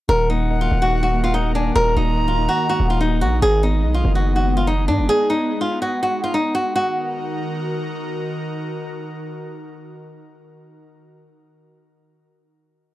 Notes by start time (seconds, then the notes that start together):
0.09 D#1 D#3 D#4 F#4 A#4 F#5
0.30 A#3 D#4
0.51 D#5
0.61 F4
0.71 D#1 D#4
0.82 F#4
1.03 F#4
1.13 A#3
1.24 F4
1.34 D#4
1.55 D4 D#4 G#5
1.76 D#1 A#4 A#5
1.96 D#1 A#3 D#4
2.17 D1 D#5
2.28 F4
2.33 D#1
2.38 D#4
2.49 F#4
2.69 F#4
2.80 D#1 A#3
2.90 F4
3.01 D#4
3.21 A#1 D#4 F#4
3.42 G#1 D#3 G#3 B3 G#4
3.63 B3 D#4
3.84 B1 D#5
3.94 F4
4.05 F#1 D#4
4.15 F#4
4.36 F#4
4.47 B3
4.57 F4
4.67 D#4
4.88 G#2 D4 D#4
4.99 F#1
5.09 G#4
5.30 D#4
5.61 F4
5.82 F#4
6.03 F#4
6.24 F4
6.34 D#4
6.55 F#4
6.76 D#3 D#4 F#4 A#4